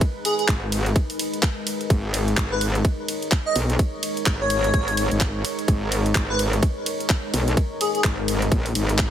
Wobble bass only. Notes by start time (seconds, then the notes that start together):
0.48 G#1
1.90 G#1
2.37 G#1
3.56 B1
4.26 G#1
4.74 G#1
5.11 G#1
5.68 G#1
6.15 G#1
7.34 B1
8.04 G#1
8.52 A#1
8.75 G#1